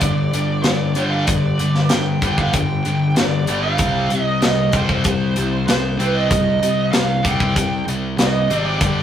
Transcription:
0.01 picked electric bass G1, distorted electric guitar G2 D3, lead electric guitar D5, kick, closed hi-hat
0.33 picked electric bass G1, distorted electric guitar G2 D3, closed hi-hat
0.63 picked electric bass G1, distorted electric guitar G2 D3, lead electric guitar D5, snare, closed hi-hat
0.95 picked electric bass G1, distorted electric guitar G2 D3 G3, closed hi-hat
1.11 lead electric guitar F5
1.26 picked electric bass G1, distorted electric guitar G2, lead electric guitar D5, kick, closed hi-hat
1.30 distorted electric guitar D3
1.59 picked electric bass G1, distorted electric guitar G2 D3, closed hi-hat
1.75 snare
1.89 picked electric bass G1, distorted electric guitar G2 D3, lead electric guitar G5, snare, closed hi-hat
2.22 picked electric bass G1, distorted electric guitar G2 D3 G3, kick, closed hi-hat
2.38 lead electric guitar F5, kick
2.53 picked electric bass G1, distorted electric guitar G2 D3, lead electric guitar G5, kick, closed hi-hat
2.85 picked electric bass G1, distorted electric guitar G2 D3, closed hi-hat
3.16 picked electric bass G1, distorted electric guitar G2 D3, lead electric guitar D5, snare, closed hi-hat
3.47 picked electric bass G1, distorted electric guitar G2 D3 G3, closed hi-hat
3.62 lead electric guitar F5
3.78 picked electric bass C2, distorted electric guitar C3 G3 C4, kick, closed hi-hat
4.10 picked electric bass C2, distorted electric guitar C3 G3, closed hi-hat
4.22 lead electric guitar D#5
4.42 picked electric bass C2, distorted electric guitar C3 G3, lead electric guitar D#5, snare, closed hi-hat
4.73 picked electric bass C2, distorted electric guitar C3 G3 C4, lead electric guitar C5, kick, closed hi-hat
4.89 kick
5.04 picked electric bass C2, distorted electric guitar C3 G3, kick, closed hi-hat
5.36 picked electric bass C2, distorted electric guitar C3 G3, closed hi-hat
5.67 picked electric bass C2, distorted electric guitar C3 G3, lead electric guitar C5, snare, closed hi-hat
5.99 picked electric bass C2, distorted electric guitar C3 G3 C4, closed hi-hat
6.03 lead electric guitar B4
6.15 lead electric guitar D#5
6.30 picked electric bass C2, distorted electric guitar C3 G3, kick, closed hi-hat
6.62 picked electric bass C2, distorted electric guitar C3 G3, closed hi-hat
6.92 picked electric bass C2, distorted electric guitar C3 G3, lead electric guitar F5, snare, closed hi-hat
7.23 picked electric bass C2, distorted electric guitar C3 G3 C4, lead electric guitar G5, kick, closed hi-hat
7.40 kick
7.56 picked electric bass C2, distorted electric guitar C3 G3, kick, closed hi-hat
7.86 picked electric bass C2, distorted electric guitar C3 G3, closed hi-hat
8.18 picked electric bass C2, distorted electric guitar C3 G3, lead electric guitar D#5, snare, closed hi-hat
8.49 picked electric bass G#1, distorted electric guitar C3 G3 C4, closed hi-hat
8.66 lead electric guitar D5
8.81 picked electric bass G1, distorted electric guitar G2 D3 G3, kick, closed hi-hat

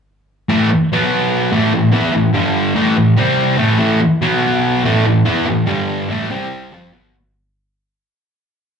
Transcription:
0.49 distorted electric guitar A2 E3 A3
0.71 muted distorted electric guitar stroke
0.92 distorted electric guitar B2 F#3 B3
1.52 distorted electric guitar A2 E3 A3
1.73 distorted electric guitar A2 E3
1.92 distorted electric guitar E3 B3 E4
2.13 distorted electric guitar A2 E3
2.33 distorted electric guitar G2 D3 G3
2.75 distorted electric guitar A2 E3 A3
2.97 distorted electric guitar A2 E3
3.17 distorted electric guitar C3 G3 C4
3.57 distorted electric guitar A2 E3 A3
3.78 distorted electric guitar A2 E3 A3
4.01 muted distorted electric guitar stroke
4.21 distorted electric guitar B2 F#3 B3
4.84 distorted electric guitar A2 E3 A3
5.05 distorted electric guitar A2 E3
5.25 distorted electric guitar E3 B3 E4
5.46 distorted electric guitar A2 E3
5.66 distorted electric guitar G2 D3 G3
6.09 distorted electric guitar A2 E3 A3
6.30 distorted electric guitar C3 G3 C4
6.72 distorted electric guitar F3 C4 F4
6.93 distorted electric guitar B2 F#3 B3

